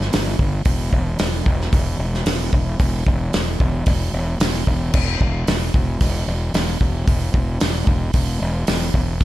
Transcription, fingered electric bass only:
0.00 0.12 G1 medium
0.14 0.38 G1 medium
0.39 0.65 G1 medium
0.65 0.92 E1 medium
0.93 1.19 E1 loud
1.20 1.45 E1 loud
1.46 1.72 E1 medium
1.73 1.98 E1 medium
1.99 2.25 E1 loud
2.26 2.52 E1 medium
2.53 2.79 E1 medium
2.79 3.05 E1 medium
3.07 3.32 E1 medium
3.34 3.59 E1 medium
3.60 3.86 E1 medium
3.87 4.12 E1 loud
4.13 4.39 E1 medium
4.40 4.66 E1 medium
4.67 4.93 E1 loud
4.94 5.19 E1 loud
5.20 5.46 E1 medium
5.48 5.73 E1 medium
5.74 6.00 E1 medium
6.01 6.26 E1 loud
6.28 6.53 E1 medium
6.54 6.79 E1 medium
6.81 7.06 E1 medium
7.08 7.33 E1 medium
7.34 7.59 E1 medium
7.61 7.87 E1 medium
7.87 8.13 E1 medium
8.14 8.40 E1 medium
8.42 8.67 E1 loud
8.68 8.93 E1 medium
8.94 9.20 E1 medium
9.21 9.24 A1 medium

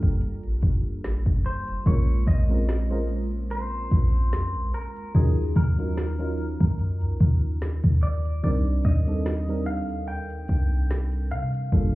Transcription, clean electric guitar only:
0.00 0.18 A#4 medium
1.46 1.84 C5 medium
1.87 2.27 C#5 loud
2.28 3.06 D#5 loud
3.51 4.70 C5 loud
4.74 5.12 A#4 medium
5.16 5.54 G#4 loud
5.57 6.76 A#4 medium
8.03 8.41 D5 medium
8.44 8.82 D5 medium
8.85 9.66 D#5 medium
9.66 10.07 F5 medium
10.08 11.31 G5 loud
11.31 11.95 F5 medium

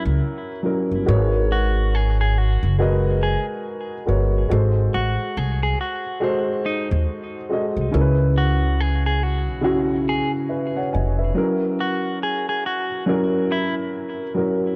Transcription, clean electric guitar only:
1.52 1.95 F#4 medium
1.95 2.17 G#4 medium
2.21 2.38 G#4 medium
2.38 2.76 F#4 medium
3.23 3.45 G#4 medium
4.94 5.37 F#4 medium
5.37 5.60 G#4 medium
5.63 5.78 G#4 medium
5.81 6.19 F#4 medium
6.66 6.88 D#4 medium
8.38 8.80 F#4 medium
8.80 9.03 G#4 medium
9.06 9.23 G#4 medium
9.23 9.61 F#4 medium
10.09 10.31 G#4 medium
11.80 12.18 F#4 medium
12.23 12.46 G#4 medium
12.49 12.64 G#4 medium
12.66 13.04 F#4 medium
13.52 13.74 E4 medium

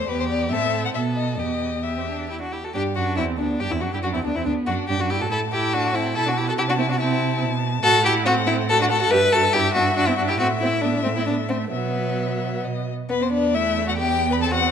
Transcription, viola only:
0.09 0.54 B3 medium
0.53 0.97 C4 medium
0.95 1.38 B3 medium
1.39 1.83 B3 soft
1.85 1.95 B3 soft
1.97 2.01 C4 soft
2.08 2.29 D4 soft
2.30 2.40 E4 soft
2.40 2.45 D4 soft
2.52 2.57 E4 soft
2.63 2.68 F#4 soft
2.75 2.83 D4 medium
2.97 3.20 D4 medium
3.18 3.39 C4 medium
3.40 3.62 B3 soft
3.61 3.73 D4 medium
3.71 3.82 C4 soft
3.83 3.93 D4 soft
3.93 3.98 E4 medium
4.04 4.14 D4 medium
4.15 4.19 C4 medium
4.25 4.30 B3 medium
4.36 4.48 C4 medium
4.46 4.69 B3 medium
4.68 4.89 D4 medium
4.90 4.94 D4 medium
5.00 5.12 D4 soft
5.10 5.22 E4 medium
5.21 5.30 F#4 medium
5.30 5.38 E4 medium
5.53 5.75 E4 medium
5.74 5.96 D4 medium
5.95 6.15 C4 medium
6.16 6.26 E4 medium
6.26 6.30 D4 medium
6.36 6.49 E4 medium
6.47 6.58 F#4 medium
6.58 6.62 E4 medium
6.68 6.73 D4 medium
6.78 6.83 C4 medium
6.89 6.93 D4 medium
7.00 7.41 C4 medium
7.83 8.03 F#4 medium
8.04 8.28 E4 medium
8.26 8.47 C4 medium
8.48 8.69 C4 medium
8.70 8.74 F#4 medium
8.80 8.91 D4 medium
8.90 8.99 F#4 medium
9.00 9.04 F#4 medium
9.11 9.19 G4 medium
9.33 9.41 F#4 medium
9.55 9.63 E4 medium
9.76 9.84 D4 medium
9.97 10.07 D4 medium
10.08 10.12 C4 medium
10.19 10.30 D4 medium
10.28 10.39 E4 medium
10.39 10.47 C4 medium
10.62 10.70 C4 medium
10.83 10.91 B3 medium
11.05 11.10 A3 medium
11.16 11.21 C4 medium
11.27 11.35 B3 medium
11.51 11.72 A3 medium
11.73 12.63 F#3 medium
13.10 13.56 B3 medium
13.54 13.99 A3 medium
13.98 14.43 B3 medium
14.42 14.71 C4 medium

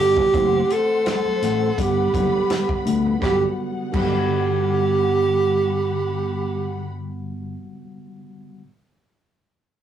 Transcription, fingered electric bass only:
0.00 0.25 G1 medium
0.34 0.61 F#1 medium
1.42 1.70 A1 medium
1.78 2.06 G1 loud
2.14 2.29 F#1 medium
2.86 3.13 D2 medium
3.22 3.43 G1 medium
3.94 7.56 G1 medium

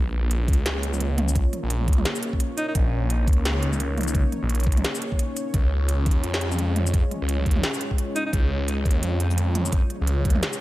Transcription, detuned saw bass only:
0.00 0.47 A#1 loud
0.48 0.65 C#2 medium
0.66 1.44 C#2 loud
1.63 1.87 A#1 loud
1.88 2.04 C#2 medium
2.75 3.27 A#1 loud
3.27 3.44 C#2 medium
3.45 4.24 C#2 loud
4.42 4.66 A#1 loud
4.67 4.83 C#2 medium
5.54 6.05 C#2 loud
6.06 6.23 D#2 medium
6.24 7.03 F2 loud
7.22 7.45 C#2 loud
7.46 7.62 D#2 medium
8.33 8.85 C#2 loud
8.86 9.02 D#2 medium
9.03 9.82 F2 loud
10.01 10.24 C#2 loud
10.25 10.41 D#2 medium

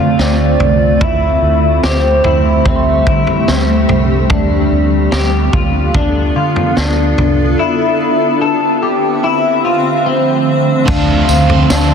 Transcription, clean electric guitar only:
0.00 0.19 F4 medium
0.19 1.01 C4 medium
1.01 1.83 E4 medium
1.84 2.24 G4 medium
2.25 2.66 E4 medium
2.66 3.07 C4 medium
3.07 3.48 E4 medium
3.48 4.30 C4 medium
4.30 5.13 D4 medium
5.12 5.53 G4 medium
5.54 5.95 F4 medium
5.95 6.36 D4 medium
6.36 6.77 F4 medium
6.77 7.59 D4 medium
7.59 8.41 E4 medium
8.41 8.82 A4 medium
8.83 9.23 G4 medium
9.24 9.64 E4 medium
9.65 10.06 F4 medium
10.06 10.88 C4 medium
10.88 11.29 D4 medium
11.29 11.70 C4 medium
11.70 11.94 D4 medium

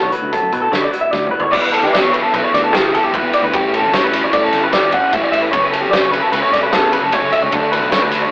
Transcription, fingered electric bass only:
0.02 0.10 B1 medium
0.22 0.30 D2 medium
0.42 0.50 F#2 medium
0.53 0.68 B2 medium
0.72 0.88 D3 medium
1.13 1.28 D2 medium
1.54 1.84 E2 medium
1.82 1.98 E3 medium
2.03 2.18 E2 medium
2.33 2.41 B1 loud
2.53 2.73 D2 medium
2.73 2.96 C#3 loud
3.03 3.11 E2 loud
3.22 3.30 E2 medium
3.42 3.50 D2 medium
3.54 3.83 A1 loud
3.82 3.97 G1 medium
4.03 4.26 A1 medium
4.33 4.48 A2 medium
4.53 4.68 G1 medium
4.82 4.98 G1 medium
5.13 5.20 A1 loud
5.32 5.48 A1 loud
5.53 5.84 F#1 loud
5.82 5.98 F#2 medium
6.02 6.18 F#1 medium
6.32 6.40 C#2 loud
6.51 6.73 E1 medium
6.71 6.95 E2 loud
7.01 7.09 F#1 medium
7.22 7.30 F#1 medium
7.42 7.50 C#2 medium
7.53 7.82 D2 loud
7.82 7.97 B1 medium
8.02 8.25 D2 medium

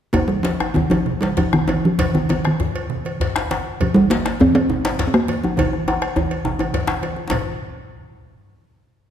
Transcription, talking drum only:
0.13 0.29 A#3 medium
0.28 0.45 G3 medium
0.43 0.76 F3 medium
0.74 0.91 D#3 medium
0.90 1.22 F3 medium
1.21 1.39 G3 medium
1.37 1.55 F3 medium
1.53 1.68 D#3 medium
1.69 1.87 D#3 medium
1.85 2.16 F3 medium
2.15 2.30 D#3 medium
2.30 2.44 D#3 medium
2.47 3.03 D#3 medium
3.81 3.94 F3 medium
3.94 4.12 G3 medium
4.10 4.42 A#3 medium
4.41 4.54 C4 medium
4.55 5.04 C4 medium
5.07 5.15 C4 medium
5.14 5.45 A#3 medium
5.44 5.59 F3 medium
5.57 6.45 D#3 medium
7.30 7.44 A#2 medium

